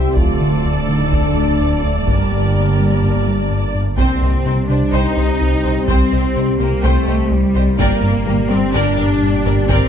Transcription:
Already playing: double bass section C2, cello section C2, detuned saw bass C2, ambient pad G3 C4 G4 E5, french horn section G4, viola section C5 E5, violin section G5
0.16 detuned saw bass D1, double bass section D2, analog synth bass D2, cello section D2, ambient pad D3 A3 D5 A5, french horn section F4, viola section A4 D5, violin section D5 A5, taiko
0.41 analog synth bass D3
0.65 analog synth bass D2
0.87 analog synth bass D3, french horn section D#4
1.11 analog synth bass D2, french horn section D4, taiko
1.36 analog synth bass D3
1.60 analog synth bass D2
1.83 analog synth bass D2, french horn section A3
2.07 double bass section G1, detuned saw bass G1, cello section G2, analog synth bass G2, french horn section G3, ambient pad A#3, viola section A#4, taiko
2.32 analog synth bass G3
2.56 analog synth bass G2
2.80 analog synth bass G3
3.03 analog synth bass G2, taiko
3.28 analog synth bass G3
3.51 analog synth bass G2
3.75 analog synth bass G2
3.98 double bass section C2, detuned saw bass C2, analog synth bass C2, ambient pad G3 C4 G4 C5, cello section C4, french horn section G4 C5, viola section C5, violin section C5 G5, taiko
4.21 double bass section C2, analog synth bass C2, violin section G4 D#5, viola section C5
4.45 double bass section C2, analog synth bass C3, violin section D#4 C5, viola section C5
4.69 double bass section C2, analog synth bass C3, cello section D4, violin section G4 D#5, viola section C5
4.93 analog synth bass C2, double bass section C2, cello section D#4, viola section C5, violin section C5 G5
5.17 analog synth bass C2, double bass section C2, violin section G4 D#5, viola section C5
5.41 analog synth bass C2
5.64 analog synth bass C2, double bass section C2, violin section G4 D#5, viola section C5
5.88 analog synth bass C2, double bass section C2, cello section C4, viola section C5, violin section C5 G5, taiko
6.12 double bass section C2, analog synth bass C2, violin section G4 D#5, viola section C5
6.36 double bass section C2, analog synth bass C3, violin section D#4 C5, viola section C5
6.60 double bass section C2, analog synth bass C3, cello section A#3, violin section G4 D#5, viola section C5
6.83 analog synth bass C2, double bass section C2, cello section A3, viola section C5, violin section C5 G5
7.07 analog synth bass C2, double bass section C2, violin section G4 D#5, viola section C5
7.31 analog synth bass C2, cello section G3
7.55 analog synth bass C2, double bass section C2, violin section G4 D#5, viola section C5
7.79 detuned saw bass G1, double bass section G1, analog synth bass G2, ambient pad A#2 G3 G4 D5, cello section A#3, french horn section G4 D5, viola section A#4, violin section D5 G5, taiko
8.02 double bass section G1, analog synth bass G2, viola section A#4, violin section A#4 D5
8.26 double bass section G1, analog synth bass G3, violin section G4 A#4, viola section A#4
8.50 double bass section G1, analog synth bass G3, cello section C4, viola section A#4, violin section A#4 D5
8.74 double bass section G1, analog synth bass G2, cello section D4, viola section A#4, violin section D5 G5
8.98 double bass section G1, analog synth bass G2, viola section A#4, violin section A#4 D5
9.22 analog synth bass G2
9.45 double bass section G1, analog synth bass G2, viola section A#4, violin section A#4 D5
9.69 double bass section G1, analog synth bass G2, cello section C4, viola section A#4, violin section D5 G5, taiko

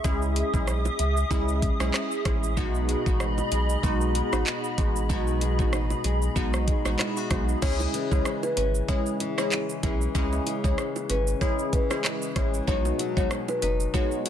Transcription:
Already playing: analog synth pad G#4 E5
0.04 sub bass C#2, synth pluck G#3 C#4 E4 G#4, analog synth pad D#6, kick, shaker
0.22 shaker
0.36 closed hi-hat, shaker
0.53 sub bass B1, synth pluck G#3 C#4 E4 G#4, kick, shaker
0.68 cross-stick, shaker
0.85 high bongo, shaker
0.99 sub bass C#2, closed hi-hat, low bongo, shaker
1.17 shaker
1.30 sub bass C#2, synth pluck G#3 C#4 E4 G#4, kick, shaker
1.48 shaker
1.62 kick, closed hi-hat, shaker
1.80 sub bass B1, synth pluck G#3 C#4 E4 G#4, cross-stick, high bongo, shaker
1.94 cross-stick, clap, shaker
2.11 shaker
2.25 sub bass A1, synth pluck G#3 C#4 E4 G#4, kick, cross-stick, closed hi-hat, high bongo, low bongo, shaker
2.43 shaker
2.57 sub bass B1, nylon-string guitar B2, synth pluck G#3 B3 D#4 F#4, analog synth pad D#5 B5, kick, shaker
2.75 shaker
2.89 nylon-string guitar G#3, closed hi-hat, shaker
3.06 sub bass A1, synth pluck G#3 B3 D#4 F#4, kick, shaker
3.20 nylon-string guitar D#4, cross-stick, shaker
3.38 high bongo, shaker
3.52 sub bass B1, nylon-string guitar G#3, closed hi-hat, low bongo, shaker
3.69 shaker
3.83 sub bass B1, synth pluck G#3 B3 D#4 F#4, nylon-string guitar D#4, kick, shaker
4.01 shaker
4.15 nylon-string guitar G#3, closed hi-hat, shaker
4.32 sub bass A1, synth pluck G#3 B3 D#4 F#4, cross-stick, high bongo, shaker
4.47 nylon-string guitar F#4, clap, shaker
4.64 shaker
4.78 sub bass A1, synth pluck G#3 B3 D#4 F#4, nylon-string guitar G#3, kick, closed hi-hat, high bongo, low bongo, shaker
4.96 shaker
5.09 sub bass B1, nylon-string guitar B2, synth pluck G#3 B3 D#4 F#4, kick, shaker
5.27 shaker
5.41 nylon-string guitar G#3, closed hi-hat, shaker
5.59 sub bass A1, synth pluck G#3 B3 D#4 F#4, kick, shaker
5.73 nylon-string guitar D#4, cross-stick, shaker
5.90 high bongo, shaker
6.04 sub bass B1, nylon-string guitar G#3, closed hi-hat, low bongo, shaker
6.22 shaker
6.36 sub bass B1, synth pluck G#3 B3 D#4 F#4, nylon-string guitar D#4, kick, shaker
6.54 cross-stick, shaker
6.68 nylon-string guitar G#3, kick, closed hi-hat, shaker
6.85 sub bass A1, synth pluck G#3 B3 D#4 F#4, cross-stick, high bongo, shaker
6.99 nylon-string guitar E4, cross-stick, clap, shaker
7.17 nylon-string guitar F#4, shaker
7.30 sub bass B1, synth pluck G#3 B3 D#4 F#4, nylon-string guitar G#3, kick, cross-stick, closed hi-hat, high bongo, low bongo, shaker
7.49 shaker
7.62 sub bass C#2, nylon-string guitar C#3 C#4, synth pluck G#3 C#4 E4 G#4, marimba C#5, kick, crash, shaker
7.80 high bongo, shaker
7.94 nylon-string guitar E3, closed hi-hat, high bongo, shaker
8.11 sub bass C#2, synth pluck G#3 C#4 E4 G#4, marimba C#5, kick, shaker
8.25 nylon-string guitar G#3, cross-stick, shaker
8.43 marimba B4, high bongo, shaker
8.57 sub bass G#1, nylon-string guitar C#4, marimba B4, closed hi-hat, low bongo, shaker
8.75 shaker
8.88 synth pluck G#3 C#4 E4 G#4, nylon-string guitar G#3, marimba C#5, kick, shaker
9.06 shaker
9.20 nylon-string guitar E3, closed hi-hat, high bongo, shaker
9.38 synth pluck G#3 C#4 E4 G#4, marimba C#5, cross-stick, high bongo, shaker
9.52 nylon-string guitar G#3, clap, shaker
9.69 shaker
9.83 sub bass B1, nylon-string guitar E3, synth pluck G#3 C#4 E4 G#4, kick, closed hi-hat, high bongo, low bongo, shaker
10.01 shaker
10.15 sub bass C#2, nylon-string guitar C#3 C#4, synth pluck G#3 C#4 E4 G#4, kick, shaker
10.33 high bongo, shaker
10.46 nylon-string guitar E3, closed hi-hat, high bongo, shaker
10.64 sub bass C#2, synth pluck G#3 C#4 E4 G#4, marimba C#5, kick, shaker
10.78 nylon-string guitar G#3, cross-stick, shaker
10.96 high bongo, shaker
11.10 sub bass G#1, nylon-string guitar C#4, marimba B4, closed hi-hat, low bongo, shaker
11.27 shaker
11.41 synth pluck G#3 C#4 E4 G#4, nylon-string guitar G#3, marimba C#5, kick, shaker
11.59 shaker
11.73 nylon-string guitar E3, marimba B4, kick, closed hi-hat, high bongo, shaker
11.90 synth pluck G#3 C#4 E4 G#4, cross-stick, high bongo, shaker
12.04 nylon-string guitar G#3, cross-stick, clap, shaker
12.22 shaker
12.36 sub bass A1, nylon-string guitar E3, synth pluck G#3 C#4 E4 G#4, marimba C#5, kick, cross-stick, closed hi-hat, high bongo, low bongo, shaker
12.54 shaker
12.67 sub bass B1, nylon-string guitar B2 D#4, synth pluck G#3 B3 D#4 F#4, marimba C#5, kick, shaker
12.85 high bongo, shaker
12.99 nylon-string guitar F#3, closed hi-hat, high bongo, shaker
13.17 sub bass B1, synth pluck G#3 B3 D#4 F#4, marimba C#5, kick, shaker
13.31 nylon-string guitar G#3, cross-stick, shaker
13.48 marimba B4, high bongo, shaker
13.62 sub bass F#1, nylon-string guitar D#4, marimba B4, closed hi-hat, low bongo, shaker
13.80 shaker
13.94 synth pluck G#3 B3 D#4 F#4, nylon-string guitar G#3, marimba C#5, kick, shaker
14.11 shaker
14.26 nylon-string guitar F#3, closed hi-hat, high bongo, shaker

